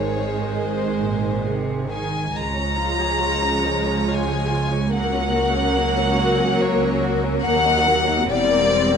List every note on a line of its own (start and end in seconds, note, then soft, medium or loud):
0.00 2.15 G#1 soft
0.00 0.49 G#2 soft
0.00 2.11 D#3 soft
0.00 2.15 G#3 soft
0.00 2.11 G#4 medium
0.00 2.15 C5 medium
0.00 0.60 C#5 medium
0.58 1.00 G#2 soft
0.58 1.48 C5 medium
1.03 1.46 A#2 soft
1.47 1.92 C3 soft
1.91 2.36 D#3 soft
1.91 2.33 G#5 medium
2.35 7.41 C#2 medium
2.35 4.89 F3 soft
2.35 2.56 G#3 soft
2.35 4.89 G#3 soft
2.35 4.89 C#5 medium
2.35 4.10 A#5 medium
2.56 2.79 C#4 soft
2.79 3.02 F4 soft
3.00 3.23 G#4 soft
3.22 3.45 F4 soft
3.43 3.66 C#4 soft
3.65 3.88 G#3 soft
3.86 4.08 C#4 soft
4.08 4.30 F4 medium
4.08 4.93 G#5 medium
4.28 4.50 G#4 soft
4.50 4.72 F4 medium
4.71 4.92 C#4 soft
4.91 8.30 F#3 medium
4.91 5.12 A#3 medium
4.91 8.26 A#3 medium
4.91 8.97 A#4 medium
4.91 6.57 F#5 medium
5.13 5.35 C#4 medium
5.35 5.56 F#4 medium
5.56 5.78 C#4 medium
5.77 5.98 A#3 medium
5.97 6.19 C#4 medium
6.18 6.39 F#4 medium
6.38 6.60 C#4 medium
6.60 6.82 A#3 medium
6.60 7.02 C#5 medium
6.80 7.02 C#4 medium
7.01 7.23 F#4 medium
7.23 7.44 C#4 medium
7.43 8.29 D#2 medium
7.43 8.30 D#2 medium
7.43 7.64 A#3 medium
7.43 8.25 F#5 loud
7.65 7.87 D#4 medium
7.86 8.08 A#3 medium
8.07 8.29 D#4 medium
8.28 8.97 E1 medium
8.28 8.97 E2 medium
8.28 8.49 G3 medium
8.28 8.97 G3 medium
8.28 8.97 C4 medium
8.28 8.97 D5 loud
8.49 8.72 A#3 medium
8.69 8.93 C4 medium
8.92 8.97 A#3 medium